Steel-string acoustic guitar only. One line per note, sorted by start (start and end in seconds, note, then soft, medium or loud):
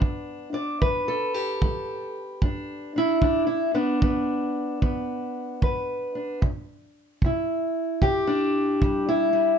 0.00 0.75 G2 medium
0.00 2.95 B3 soft
0.00 0.52 D4 soft
0.00 0.54 B4 soft
0.53 1.08 D4 soft
0.53 0.81 D5 medium
0.82 1.57 G2 medium
0.82 1.34 B4 medium
1.08 2.15 A4 medium
1.34 3.75 G4 medium
1.64 2.37 G2 medium
2.42 3.17 G2 medium
2.42 2.94 D4 medium
2.96 3.21 D4 soft
2.96 3.45 E4 medium
3.22 3.97 G2 medium
3.22 3.46 D4 medium
3.47 3.74 E4 medium
3.74 4.02 B3 soft
3.74 6.13 D4 medium
4.02 4.76 G2 medium
4.02 4.81 B3 soft
4.82 5.56 G2 medium
4.82 6.42 B3 soft
5.62 6.36 G2 medium
5.62 6.39 B4 soft
6.15 6.43 D4 soft
6.42 7.16 C3 medium
7.24 7.97 C3 medium
7.24 9.07 E4 soft
8.02 8.76 C3 medium
8.02 9.08 G4 medium
8.27 9.08 D4 medium
8.82 9.56 C3 medium
8.82 9.32 G3 soft
9.09 9.59 E4 medium
9.33 9.59 G3 soft